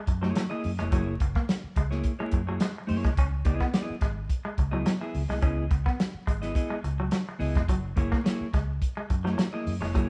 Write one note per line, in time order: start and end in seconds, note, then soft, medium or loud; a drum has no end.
0.07 0.32 F#2 medium
0.07 muted clean electric guitar stroke soft
0.07 kick medium
0.07 closed hi-hat medium
0.22 0.31 F#3 medium
0.22 0.43 A#3 medium
0.22 0.42 E4 medium
0.22 0.42 G#4 medium
0.22 0.42 C#5 medium
0.22 snare soft
0.36 0.45 F#3 medium
0.36 snare loud
0.36 closed hi-hat loud
0.50 0.71 A#3 medium
0.50 0.71 E4 medium
0.50 0.70 G#4 medium
0.50 0.70 D#5 medium
0.50 muted clean electric guitar stroke soft
0.64 0.77 F#2 medium
0.64 open hi-hat medium
0.78 0.91 F1 medium
0.78 0.87 G#3 medium
0.78 0.91 A#3 medium
0.78 0.91 E4 medium
0.78 0.91 G#4 medium
0.78 0.92 C#5 medium
0.78 snare soft
0.78 closed hi-hat soft
0.92 1.16 F#1 loud
0.92 1.01 F#3 medium
0.92 1.13 A#3 medium
0.92 1.13 E4 loud
0.92 1.13 G#4 loud
0.92 1.14 C#5 loud
0.92 kick loud
0.92 closed hi-hat medium
1.20 1.33 F#1 medium
1.20 muted clean electric guitar stroke soft
1.20 kick loud
1.20 closed hi-hat medium
1.35 1.44 A#3 medium
1.35 kick loud
1.35 snare soft
1.49 snare loud
1.49 closed hi-hat medium
1.64 muted fingered electric bass stroke soft
1.76 2.00 C#2 medium
1.76 1.86 G#3 medium
1.76 kick medium
1.76 closed hi-hat medium
1.91 2.12 A#3 medium
1.91 2.12 E4 medium
1.91 2.11 G#4 medium
1.91 2.11 C#5 medium
1.91 snare soft
2.04 kick medium
2.04 closed hi-hat medium
2.19 2.28 G#3 medium
2.19 2.40 A#3 medium
2.19 2.40 E4 medium
2.19 2.40 G#4 medium
2.19 2.39 C#5 medium
2.32 2.57 F#2 medium
2.32 muted clean electric guitar stroke soft
2.32 kick medium
2.32 closed hi-hat medium
2.47 2.56 F#3 medium
2.47 2.64 A#3 soft
2.47 2.64 E4 soft
2.47 2.63 G#4 medium
2.47 2.63 C#5 medium
2.60 2.71 G#3 medium
2.60 snare loud
2.60 closed hi-hat loud
2.78 muted clean electric guitar stroke soft
2.87 3.02 F#2 medium
2.87 3.09 A#3 medium
2.87 3.09 E4 medium
2.87 3.10 G#4 medium
2.87 3.10 C#5 loud
2.87 open hi-hat medium
3.04 3.16 C2 medium
3.04 3.12 G#3 medium
3.04 kick medium
3.04 snare soft
3.04 closed hi-hat soft
3.17 3.42 C#2 loud
3.17 3.27 C#4 medium
3.17 kick loud
3.17 closed hi-hat medium
3.45 3.58 C#2 medium
3.45 3.66 B3 medium
3.45 3.66 E4 medium
3.45 3.66 G#4 medium
3.45 3.67 D#5 medium
3.45 muted clean electric guitar stroke soft
3.45 kick loud
3.45 closed hi-hat medium
3.60 3.69 B3 medium
3.60 kick medium
3.60 snare soft
3.73 3.95 B3 medium
3.73 3.95 E4 medium
3.73 3.95 G#4 medium
3.73 3.95 D#5 medium
3.73 snare loud
3.73 closed hi-hat loud
3.90 muted fingered electric bass stroke soft
4.01 4.26 G#1 medium
4.01 4.11 G#3 medium
4.01 kick medium
4.01 snare soft
4.01 closed hi-hat medium
4.29 kick medium
4.29 closed hi-hat medium
4.45 4.53 G#3 medium
4.58 4.82 C#2 medium
4.58 muted clean electric guitar stroke soft
4.58 kick medium
4.58 closed hi-hat medium
4.71 4.81 F#3 medium
4.71 4.93 B3 medium
4.71 4.93 E4 medium
4.71 4.93 G#4 medium
4.71 4.92 D#5 medium
4.86 4.95 F#3 medium
4.86 snare loud
4.86 closed hi-hat loud
5.01 5.22 B3 medium
5.01 5.22 E4 medium
5.01 5.22 G#4 medium
5.01 5.21 E5 medium
5.01 muted clean electric guitar stroke soft
5.14 5.28 C#2 loud
5.14 open hi-hat medium
5.29 5.41 C2 medium
5.29 5.38 G#3 medium
5.29 5.40 B3 medium
5.29 5.41 E4 medium
5.29 5.42 G#4 medium
5.29 5.42 D#5 medium
5.29 snare soft
5.42 5.67 C#2 loud
5.42 5.63 B3 medium
5.42 5.52 C#4 medium
5.42 5.64 E4 medium
5.42 5.64 G#4 medium
5.42 5.64 D#5 loud
5.42 kick loud
5.42 closed hi-hat medium
5.71 5.84 C#2 loud
5.71 muted clean electric guitar stroke soft
5.71 kick loud
5.71 closed hi-hat medium
5.86 5.94 B3 medium
5.86 kick medium
5.86 snare soft
6.00 snare loud
6.00 closed hi-hat medium
6.14 muted fingered electric bass stroke soft
6.27 6.52 G#1 medium
6.27 6.36 G#3 medium
6.27 kick medium
6.27 closed hi-hat medium
6.42 6.54 B3 medium
6.42 6.54 E4 medium
6.42 6.55 G#4 medium
6.42 6.55 D#5 medium
6.42 snare soft
6.42 closed hi-hat soft
6.55 6.77 B3 medium
6.55 6.77 E4 medium
6.55 6.77 G#4 medium
6.55 6.77 D#5 medium
6.55 kick medium
6.55 closed hi-hat medium
6.70 6.78 G#3 medium
6.84 7.08 C#2 medium
6.84 muted clean electric guitar stroke soft
6.84 closed hi-hat medium
7.00 7.08 F#3 medium
7.11 7.21 F#3 medium
7.11 snare loud
7.11 closed hi-hat loud
7.29 muted clean electric guitar stroke soft
7.39 7.53 C#2 medium
7.39 7.61 B3 medium
7.39 7.61 E4 medium
7.39 7.61 G#4 loud
7.39 7.62 D#5 loud
7.39 open hi-hat medium
7.55 7.69 F1 medium
7.55 7.65 G#3 medium
7.55 kick medium
7.55 snare soft
7.55 closed hi-hat medium
7.69 7.93 F#1 loud
7.69 7.78 F#3 medium
7.69 kick loud
7.69 closed hi-hat medium
7.96 8.10 F#1 loud
7.96 8.18 A#3 medium
7.96 8.18 E4 loud
7.96 8.18 G#4 medium
7.96 8.19 C#5 loud
7.96 muted clean electric guitar stroke soft
7.96 kick medium
7.96 closed hi-hat medium
8.12 8.20 A#3 medium
8.12 kick medium
8.12 snare soft
8.24 8.46 A#3 medium
8.24 8.46 E4 medium
8.24 8.46 G#4 medium
8.24 8.47 C#5 medium
8.24 snare loud
8.24 closed hi-hat medium
8.41 muted fingered electric bass stroke soft
8.53 8.78 C#2 medium
8.53 8.63 G#3 medium
8.53 kick medium
8.53 snare soft
8.53 closed hi-hat medium
8.82 kick medium
8.82 closed hi-hat medium
8.97 9.05 G#3 medium
9.10 9.34 F#2 medium
9.10 muted clean electric guitar stroke soft
9.10 kick medium
9.10 closed hi-hat medium
9.24 9.33 F#3 medium
9.24 9.45 A#3 medium
9.24 9.45 E4 medium
9.24 9.45 G#4 medium
9.24 9.45 C#5 medium
9.24 snare soft
9.38 9.47 F#3 medium
9.38 snare loud
9.38 closed hi-hat loud
9.53 9.74 A#3 medium
9.53 9.74 E4 medium
9.53 9.74 G#4 medium
9.53 9.73 D#5 medium
9.53 muted clean electric guitar stroke soft
9.67 9.79 F#2 medium
9.67 open hi-hat medium
9.81 9.95 F1 medium
9.81 9.90 G#3 medium
9.81 9.93 A#3 soft
9.81 9.94 E4 medium
9.81 9.94 G#4 medium
9.81 9.95 C#5 medium
9.81 snare soft
9.94 10.09 F#1 loud
9.94 10.04 F#3 medium
9.94 10.09 A#3 medium
9.94 10.09 E4 loud
9.94 10.09 G#4 loud
9.94 10.09 C#5 loud
9.94 kick loud
9.94 closed hi-hat medium